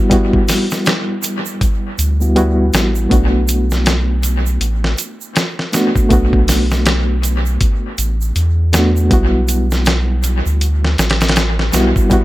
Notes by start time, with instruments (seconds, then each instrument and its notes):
Already playing: reed electric piano G3 B3 E4 F#4
0.10 reed electric piano G3 B3 E4 F#4, kick, closed hi-hat, shaker
0.33 kick
0.48 snare, open hi-hat, shaker
0.71 snare, shaker
0.85 snare, closed hi-hat, shaker
1.23 closed hi-hat, shaker
1.46 shaker
1.61 kick, closed hi-hat, shaker
1.99 analog synth bass D2, closed hi-hat, shaker
2.20 reed electric piano G3 B3 E4 F#4, shaker
2.36 reed electric piano G3 B3 E4 F#4, closed hi-hat, shaker
2.73 analog synth bass A1, snare, closed hi-hat, shaker
2.95 shaker
3.09 analog synth bass B1, reed electric piano A3 B3 D4 F#4, kick, closed hi-hat, shaker
3.48 closed hi-hat, shaker
3.71 snare, shaker
3.86 snare, closed hi-hat, shaker
4.23 closed hi-hat, shaker
4.46 shaker
4.61 analog synth bass A1, closed hi-hat, shaker
4.84 snare
4.98 closed hi-hat, shaker
5.21 shaker
5.36 snare, closed hi-hat, shaker
5.59 snare
5.72 reed electric piano A3 B3 D4 F#4, snare, closed hi-hat, shaker
5.96 kick, shaker
6.09 analog synth bass B1, reed electric piano A3 B3 D4 F#4, kick, closed hi-hat, shaker
6.33 kick
6.48 snare, open hi-hat, shaker
6.71 snare, shaker
6.86 snare, closed hi-hat, shaker
7.23 closed hi-hat, shaker
7.46 shaker
7.61 kick, closed hi-hat, shaker
7.98 analog synth bass A1, closed hi-hat, shaker
8.21 shaker
8.36 analog synth bass E2, closed hi-hat, shaker
8.73 reed electric piano A3 B3 D4 F#4, snare, closed hi-hat, shaker
8.97 shaker
9.10 analog synth bass B1, reed electric piano G3 B3 E4 F#4, kick, closed hi-hat, shaker
9.48 closed hi-hat, shaker
9.71 snare, shaker
9.85 snare, closed hi-hat, shaker
10.23 closed hi-hat, shaker
10.46 analog synth bass D2, shaker
10.61 closed hi-hat, shaker
10.85 snare
10.98 analog synth bass A1, snare, closed hi-hat, shaker
11.10 snare, closed hi-hat
11.21 snare, closed hi-hat, shaker
11.28 snare, closed hi-hat
11.36 snare, closed hi-hat, shaker
11.59 snare
11.72 analog synth bass B1, reed electric piano G3 B3 E4 F#4, snare, closed hi-hat, shaker
11.96 kick, shaker
12.09 reed electric piano G3 B3 E4 F#4, kick, closed hi-hat, shaker